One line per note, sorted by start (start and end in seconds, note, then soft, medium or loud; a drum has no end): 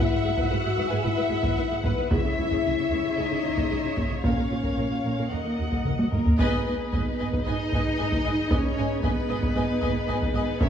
0.00 0.49 E4 medium
0.00 0.51 E5 medium
0.00 2.11 E5 medium
0.00 2.07 F#5 medium
0.11 0.18 G#2 soft
0.11 0.17 B4 soft
0.24 0.30 G#1 soft
0.24 0.32 G#2 soft
0.24 0.30 G#4 soft
0.37 0.44 G#2 medium
0.37 0.42 B4 medium
0.37 taiko medium
0.50 0.56 G#1 soft
0.50 0.58 G#2 soft
0.50 0.90 F#4 medium
0.50 0.56 B4 soft
0.50 0.90 F#5 medium
0.65 0.71 G#2 soft
0.65 0.70 G#4 soft
0.76 0.83 G#1 medium
0.76 0.83 G#2 medium
0.76 0.82 B4 medium
0.90 0.97 G#2 soft
0.90 1.04 G#4 medium
0.90 0.96 B4 soft
0.90 1.03 G#5 medium
1.02 1.09 G#1 medium
1.02 1.10 G#2 medium
1.02 1.84 E4 medium
1.02 1.08 B4 medium
1.02 1.82 E5 medium
1.17 1.24 G#2 soft
1.17 1.22 B4 soft
1.30 1.35 G#1 soft
1.30 1.37 G#2 medium
1.30 1.35 G#4 soft
1.43 1.49 G#2 medium
1.43 1.49 B4 medium
1.43 taiko medium
1.57 1.62 G#1 soft
1.57 1.63 G#2 soft
1.57 1.63 B4 soft
1.70 1.76 G#2 soft
1.70 1.75 G#4 soft
1.83 1.89 G#1 medium
1.83 1.90 G#2 medium
1.83 2.11 B3 medium
1.83 2.10 B4 medium
1.83 1.90 B4 medium
1.83 taiko medium
1.97 2.03 G#2 soft
1.97 2.03 B4 soft
2.10 2.16 C#2 medium
2.10 2.17 C#3 medium
2.10 3.16 E4 medium
2.10 2.17 G#4 medium
2.10 5.31 C#5 medium
2.10 3.17 E5 medium
2.10 4.23 E5 medium
2.10 taiko medium
2.25 2.30 C#3 soft
2.25 2.31 G#4 soft
2.38 2.44 C#2 soft
2.38 2.44 C#3 soft
2.38 2.44 E4 soft
2.51 2.57 C#3 medium
2.51 2.58 G#4 medium
2.51 taiko medium
2.65 2.70 C#2 soft
2.65 2.71 C#3 soft
2.65 2.71 G#4 soft
2.78 2.84 C#3 soft
2.78 2.83 E4 soft
2.92 2.97 C#2 medium
2.92 2.97 C#3 medium
2.92 2.97 G#4 medium
3.05 3.10 C#3 soft
3.05 3.10 G#4 soft
3.16 3.23 C#2 medium
3.16 3.23 C#3 medium
3.16 4.07 D#4 medium
3.16 3.23 G#4 medium
3.16 4.23 D#5 medium
3.31 3.36 C#3 soft
3.31 3.36 G#4 soft
3.43 3.50 C#2 soft
3.43 3.49 C#3 soft
3.43 3.49 E4 soft
3.57 3.62 C#3 soft
3.57 3.63 G#4 medium
3.57 taiko medium
3.70 3.76 C#2 soft
3.70 3.75 C#3 soft
3.70 3.76 G#4 soft
3.83 3.89 C#3 soft
3.83 3.89 E4 soft
3.96 4.02 C#2 soft
3.96 4.02 C#3 medium
3.96 4.03 G#4 soft
3.96 taiko medium
4.10 4.16 C#3 soft
4.10 4.15 G#4 soft
4.23 4.29 A#1 soft
4.23 4.29 A#2 medium
4.23 5.29 C#4 medium
4.23 4.29 A#4 medium
4.23 5.28 C#5 soft
4.23 5.29 F5 soft
4.23 taiko medium
4.37 4.42 A#2 soft
4.37 4.43 A#4 soft
4.50 4.56 A#1 soft
4.50 4.55 A#2 soft
4.50 4.56 F4 soft
4.63 4.69 A#2 soft
4.63 4.69 A#4 soft
4.63 taiko medium
4.77 4.82 A#1 soft
4.77 4.82 A#2 soft
4.77 4.83 A#4 soft
4.91 4.96 A#2 soft
4.91 4.96 F4 soft
5.04 5.09 A#1 soft
5.04 5.10 A#2 soft
5.04 5.10 A#4 soft
5.18 5.24 A#2 soft
5.18 5.24 A#4 soft
5.30 5.36 D#2 soft
5.30 5.37 D#2 soft
5.30 5.85 A#3 soft
5.30 5.85 A#4 soft
5.30 5.37 A#4 soft
5.30 6.18 D#5 soft
5.30 6.12 F#5 soft
5.45 5.50 D#2 soft
5.45 5.51 A#4 soft
5.58 5.64 D#2 soft
5.58 5.65 F#4 soft
5.72 5.77 D#2 soft
5.72 5.78 A#4 soft
5.72 taiko medium
5.85 5.91 D#2 soft
5.85 5.91 A#4 soft
5.85 taiko mid medium
5.99 6.04 D#2 soft
5.99 6.05 F#4 soft
5.99 taiko high medium
6.12 6.18 D#2 soft
6.12 6.19 D#2 soft
6.12 6.37 A#3 soft
6.12 6.37 A#4 soft
6.12 6.19 A#4 soft
6.12 taiko low-mid medium
6.25 6.32 D#2 soft
6.25 6.32 A#4 soft
6.25 taiko low medium
6.39 6.65 G#1 medium
6.39 7.41 B3 medium
6.39 10.57 D#4 medium
6.39 10.57 G#4 medium
6.39 10.57 B4 medium
6.39 6.64 B4 medium
6.39 7.42 B4 medium
6.39 10.57 D#5 medium
6.39 6.64 D#5 medium
6.39 10.58 D#5 medium
6.39 6.64 D#5 medium
6.39 6.64 G#5 medium
6.39 taiko medium
6.66 6.75 G#1 soft
6.66 6.74 B4 soft
6.66 6.74 D#5 soft
6.66 6.74 G#5 soft
6.92 7.02 G#1 soft
6.92 7.01 B4 soft
6.92 7.01 D#5 soft
6.92 7.00 G#5 soft
6.92 taiko medium
7.19 7.29 G#1 soft
7.19 7.28 B4 soft
7.19 7.27 D#5 soft
7.19 7.28 D#5 soft
7.19 7.27 G#5 soft
7.33 taiko medium
7.46 7.55 G#1 medium
7.46 8.51 D#4 medium
7.46 7.54 B4 soft
7.46 7.54 D#5 soft
7.46 7.55 D#5 soft
7.46 8.49 D#5 medium
7.46 7.55 G#5 soft
7.72 7.81 G#1 soft
7.72 7.81 B4 soft
7.72 7.82 D#5 soft
7.72 7.82 G#5 soft
7.72 taiko medium
7.98 8.08 G#1 soft
7.98 8.08 B4 soft
7.98 8.06 D#5 soft
7.98 8.08 D#5 soft
7.98 8.06 G#5 soft
8.12 taiko medium
8.25 8.34 G#1 soft
8.25 8.34 B4 soft
8.25 8.33 D#5 soft
8.25 8.34 D#5 soft
8.25 8.33 G#5 soft
8.51 8.60 G#1 medium
8.51 9.03 C#4 medium
8.51 8.59 B4 soft
8.51 9.03 C#5 medium
8.51 8.59 D#5 soft
8.51 8.59 G#5 soft
8.51 taiko medium
8.78 8.86 G#1 soft
8.78 8.86 B4 soft
8.78 8.86 D#5 soft
8.78 8.86 G#5 soft
9.03 9.12 G#1 medium
9.03 10.32 B3 medium
9.03 10.33 B4 medium
9.03 9.12 B4 soft
9.03 9.11 D#5 soft
9.03 9.12 D#5 soft
9.03 9.11 G#5 soft
9.03 taiko medium
9.28 9.38 G#1 soft
9.28 9.38 B4 soft
9.28 9.36 D#5 soft
9.28 9.37 D#5 soft
9.28 9.37 G#5 soft
9.43 taiko medium
9.55 9.64 G#1 medium
9.55 9.63 B4 medium
9.55 9.63 D#5 medium
9.55 9.65 D#5 soft
9.55 9.64 G#5 soft
9.82 9.91 G#1 medium
9.82 9.90 B4 soft
9.82 9.90 D#5 soft
9.82 9.91 D#5 medium
9.82 9.91 G#5 soft
9.82 taiko medium
10.08 10.17 G#1 medium
10.08 10.16 B4 soft
10.08 10.16 D#5 soft
10.08 10.16 D#5 medium
10.08 10.16 G#5 medium
10.22 taiko medium
10.34 10.43 G#1 medium
10.34 10.61 B3 medium
10.34 10.60 B4 medium
10.34 10.43 B4 soft
10.34 10.43 D#5 medium
10.34 10.43 D#5 soft
10.34 10.43 G#5 medium
10.60 10.69 A#1 medium
10.60 10.69 C#4 medium
10.60 10.69 A#4 medium
10.60 10.69 C#5 medium
10.60 10.69 E5 medium
10.60 taiko medium